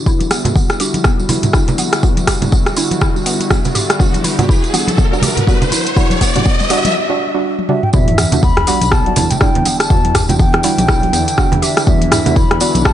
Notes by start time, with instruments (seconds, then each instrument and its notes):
0.06 detuned saw bass E2, analog synth pad D3 G3 E4 F#4, synth stab G3 D4 F#4, synth pluck E4, kick, mid tom, tambourine, riser
0.20 closed hi-hat, tambourine, high conga
0.31 synth pluck B3, cross-stick, open hi-hat, tambourine, muted conga
0.45 detuned saw bass E2, synth stab G3 D4 F#4, closed hi-hat, mid tom, tambourine, low conga
0.55 synth pluck B3, kick, mid tom, tambourine, high conga
0.70 detuned saw bass E2, cross-stick, closed hi-hat, tambourine, muted conga
0.80 synth stab G3 D4 F#4, synth pluck G4, open hi-hat, tambourine
0.94 detuned saw bass B1, closed hi-hat, tambourine, high conga
1.04 synth pluck B3, kick, cross-stick, mid tom, tambourine, muted conga
1.19 synth stab G3 D4 F#4, tambourine
1.29 detuned saw bass E2, synth pluck E4, open hi-hat, tambourine, high conga, low conga
1.43 closed hi-hat, mid tom, tambourine, muted conga, low conga
1.53 synth stab G3 D4 F#4, synth pluck E4, kick, cross-stick, mid tom, tambourine
1.68 detuned saw bass E2, closed hi-hat, tambourine, low conga
1.78 synth pluck B3, open hi-hat, tambourine, muted conga, high conga
1.93 cross-stick, closed hi-hat, tambourine
2.03 detuned saw bass E2, synth stab G3 D4 F#4, synth pluck B3, kick, mid tom, tambourine
2.17 closed hi-hat, tambourine, high conga
2.27 synth pluck G4, kick, cross-stick, open hi-hat, tambourine, muted conga
2.42 detuned saw bass E2, synth stab G3 D4 F#4, closed hi-hat, mid tom, tambourine, low conga
2.52 synth pluck B3, kick, mid tom, tambourine
2.66 detuned saw bass E2, cross-stick, closed hi-hat, tambourine, muted conga
2.76 synth stab G3 D4 F#4, synth pluck E4, open hi-hat, tambourine
2.91 detuned saw bass B1, closed hi-hat, tambourine, high conga
3.01 synth pluck E4, kick, cross-stick, mid tom, tambourine, muted conga
3.16 synth stab G3 D4 F#4, tambourine
3.26 detuned saw bass E2, synth pluck B3, open hi-hat, tambourine
3.40 closed hi-hat, tambourine, muted conga
3.50 synth stab G3 D4 F#4, synth pluck B3, kick, cross-stick, mid tom, tambourine
3.64 detuned saw bass E2, closed hi-hat, tambourine, low conga
3.75 synth pluck G4, mid tom, open hi-hat, tambourine, muted conga
3.90 cross-stick, closed hi-hat, tambourine
3.99 detuned saw bass E2, synth stab G3 D4 F#4, synth pluck B3, kick, mid tom, tambourine
4.14 closed hi-hat, tambourine, high conga
4.24 synth pluck E4, open hi-hat, mid tom, tambourine, muted conga
4.39 detuned saw bass E2, synth stab G3 D4 F#4, closed hi-hat, mid tom, tambourine, low conga
4.49 synth pluck E4, kick, mid tom, tambourine, high conga
4.63 detuned saw bass E2, closed hi-hat, tambourine, muted conga
4.73 synth stab G3 D4 F#4, synth pluck B3, open hi-hat, mid tom, tambourine
4.88 detuned saw bass B1, closed hi-hat, tambourine, high conga
4.97 synth pluck B3, kick, mid tom, tambourine, muted conga
5.13 synth stab G3 D4 F#4, tambourine
5.22 detuned saw bass E2, synth pluck G4, open hi-hat, mid tom, tambourine, high conga, low conga
5.37 closed hi-hat, mid tom, tambourine, muted conga, low conga
5.47 synth stab G3 D4 F#4, synth pluck B3, kick, mid tom, tambourine
5.61 detuned saw bass E2, closed hi-hat, tambourine, low conga
5.71 synth pluck E4, open hi-hat, mid tom, tambourine, muted conga, high conga
5.86 closed hi-hat, tambourine
5.96 detuned saw bass E2, synth stab G3 D4 F#4, synth pluck E4, kick, mid tom, tambourine, high conga
6.10 closed hi-hat, mid tom, tambourine, high conga
6.21 synth pluck B3, kick, open hi-hat, mid tom, tambourine, muted conga
6.35 detuned saw bass E2, synth stab G3 D4 F#4, closed hi-hat, mid tom, tambourine, low conga
6.45 synth pluck B3, kick, mid tom, tambourine
6.60 detuned saw bass E2, closed hi-hat, mid tom, tambourine, muted conga
6.70 synth stab G3 D4 F#4, synth pluck G4, open hi-hat, mid tom, tambourine
6.85 detuned saw bass B1, closed hi-hat, mid tom, tambourine, high conga
7.09 synth stab G3 D4 F#4
7.34 synth stab G3 D4 F#4
7.59 high tom
7.69 synth stab G3 D4 F#4, flute E5, mid tom
7.83 flute G5, mid tom
7.93 detuned saw bass E2, analog synth pad D3 E3 D4 E4, synth stab G3 D4 F#4, synth pluck E4, flute E5, kick, tambourine, sub drop
8.08 closed hi-hat, high conga
8.18 synth pluck B3, cross-stick, mid tom, open hi-hat, tambourine, muted conga
8.32 detuned saw bass E2, synth stab G3 D4 F#4, closed hi-hat, tambourine, low conga
8.43 synth pluck B3, flute B5, kick, tambourine, high conga
8.57 detuned saw bass E2, cross-stick, closed hi-hat, muted conga
8.67 synth stab G3 D4 F#4, synth pluck G4, open hi-hat, tambourine
8.81 detuned saw bass B1, closed hi-hat, tambourine, high conga
8.92 synth pluck B3, flute A5, kick, cross-stick, muted conga
9.06 synth stab G3 D4 F#4, closed hi-hat
9.16 detuned saw bass E2, synth pluck E4, open hi-hat, tambourine, high conga, low conga
9.31 flute G5, closed hi-hat, tambourine, muted conga, low conga
9.41 synth stab F#3 G3 D4, synth pluck E4, flute G5, kick, cross-stick, mid tom, tambourine
9.55 detuned saw bass E2, closed hi-hat, low conga
9.65 synth pluck B3, open hi-hat, tambourine, muted conga, high conga
9.80 flute A5, cross-stick, closed hi-hat, tambourine
9.90 detuned saw bass E2, synth stab G3 D4 F#4, synth pluck B3, kick, tambourine
10.05 closed hi-hat, high conga
10.15 synth pluck G4, kick, cross-stick, mid tom, open hi-hat, tambourine, muted conga
10.29 detuned saw bass E2, synth stab G3 D4 F#4, flute G5, closed hi-hat, tambourine, low conga
10.39 synth pluck B3, flute G5, kick, tambourine
10.53 detuned saw bass E2, cross-stick, closed hi-hat, muted conga
10.63 synth stab G3 D4 F#4, synth pluck E4, open hi-hat, tambourine
10.78 detuned saw bass B1, closed hi-hat, tambourine, high conga
10.88 synth pluck E4, kick, cross-stick, tambourine, muted conga
11.03 synth stab F#3 G3 D4, closed hi-hat
11.13 detuned saw bass E2, synth pluck B3, open hi-hat, tambourine
11.28 closed hi-hat, tambourine, muted conga
11.38 synth stab G3 D4 F#4, synth pluck B3, kick, cross-stick, tambourine
11.52 detuned saw bass E2, closed hi-hat, low conga
11.62 synth pluck G4, flute E5, open hi-hat, tambourine, muted conga
11.77 flute G5, cross-stick, closed hi-hat, tambourine
11.87 detuned saw bass E2, synth stab G3 D4 F#4, synth pluck B3, flute E5, kick, tambourine
12.01 closed hi-hat, high conga
12.11 synth pluck E4, cross-stick, mid tom, open hi-hat, tambourine, muted conga
12.26 detuned saw bass E2, synth stab G3 D4 F#4, closed hi-hat, tambourine, low conga
12.36 synth pluck E4, flute B5, kick, tambourine, high conga
12.50 detuned saw bass E2, cross-stick, closed hi-hat, muted conga
12.60 synth stab G3 D4 F#4, synth pluck B3, open hi-hat, tambourine
12.75 detuned saw bass B1, closed hi-hat, tambourine, high conga
12.85 synth pluck B3, flute A5, kick, cross-stick, tambourine, muted conga